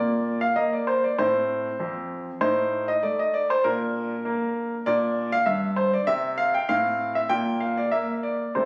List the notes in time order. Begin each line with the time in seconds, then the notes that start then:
Already playing: A#2 A#3 D5
0.41 F5
0.56 A#3 D#5
0.73 D5
0.87 C5
1.04 D5
1.18 A2 C4 C5
1.80 F2
2.41 A2 D#4 C5
2.88 D#5
3.03 A3 D5
3.19 D#5
3.34 D5
3.50 C5
3.64 A#2 D4 A#4
4.25 A#3
4.86 A#2 D4 D5
5.32 F5
5.46 G2 E5
5.76 C5
5.93 D5
6.07 C3 C4 E5
6.38 F5
6.54 G5
6.69 A2 C4 F5
7.15 E5
7.29 A#2 A#3 G5
7.60 F5
7.77 D5
7.91 A#3 E5
8.23 D5
8.55 C3 A3 C5